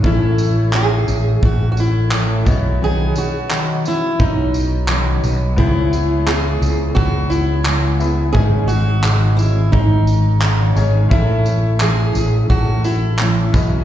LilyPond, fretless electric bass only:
\new Staff \with { instrumentName = "Fretless electric bass" } { \clef bass \time 4/4 \key a \lydian \tempo 4 = 87 a,,4. a,,8 a,,4. b,,8~ | b,,8 r4. b,,4. b,,8 | cis,4. cis,8 cis,2 | gis,,2 gis,,4. gis,,8 |
a,,4. a,,8 a,,4. b,,8 | }